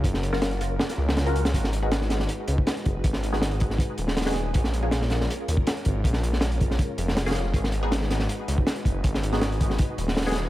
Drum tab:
HH |x---x---x-x-x-----x-----x-x-x-x-|x---x---x---x---x---x---x-x-x---|x---x---x-x-x---x---x---xxxxx---|x---x---x---x---x---x---x-x-x---|
SD |--o---o-o-------o-o---o-o-----o-|--o-----o-o-o-o---------o-------|--o---o-o-----o-------o-ooooo---|--o-----o-o-o-o---------o-------|
BD |o-------------------------------|o---------------------o-----o---|o-----------o---o---------------|o---------------------o-----o---|

HH |x---x---x-x-x---x---x---x-xxx---|x---x---x---x---x---x---x-x-x---|x---x---x-x-x---x---x---xxxxx---|
SD |--o---o-o-----o-------o-o-ooo---|--o-----o-o-o-o---------o-------|--o---o-o-----o-------o-ooooo---|
BD |o-----------o---o---------------|o---------------------o-----o---|o-----------o---o---------------|